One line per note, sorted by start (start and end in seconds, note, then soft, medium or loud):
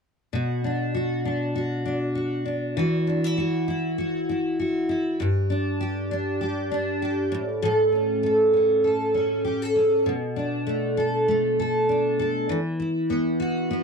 0.33 2.76 B2 medium
0.33 0.94 F#4 soft
0.64 1.24 D4 soft
0.94 1.55 F#4 medium
1.25 1.84 D4 soft
1.55 2.15 F#4 medium
1.85 2.44 D4 soft
2.15 2.77 F#4 soft
2.46 2.83 D4 soft
2.77 5.20 E3 medium
2.77 3.36 F#4 soft
3.07 3.24 D4 soft
3.24 3.67 E4 soft
3.38 3.97 F#4 medium
3.68 4.28 E4 soft
3.98 4.58 F#4 soft
4.29 4.88 E4 soft
4.60 5.20 F#4 soft
4.89 5.26 E4 soft
5.20 7.31 G2 medium
5.20 5.80 G4 soft
5.50 6.10 D4 soft
5.81 6.40 G4 medium
6.11 6.70 D4 medium
6.41 7.02 G4 soft
6.71 7.39 D4 medium
7.02 7.62 G4 medium
7.32 7.61 A2 medium
7.62 10.06 A2 medium
7.62 8.23 A4 medium
7.92 8.52 C#4 soft
8.23 8.84 A4 medium
8.53 9.13 C#4 soft
8.84 9.44 A4 soft
9.14 9.75 C#4 medium
9.45 9.62 G4 medium
9.62 10.13 A4 soft
9.76 10.13 C#4 soft
10.06 12.49 B2 medium
10.36 11.88 D4 soft
10.67 11.27 A3 medium
10.97 11.58 A4 medium
11.28 12.56 A3 soft
11.59 12.18 A4 medium
11.89 12.56 D4 soft
12.19 12.56 A4 medium
12.49 13.83 E3 medium
12.80 13.83 E4 soft
13.10 13.70 B3 medium
13.40 13.83 F#4 medium
13.71 13.83 B3 soft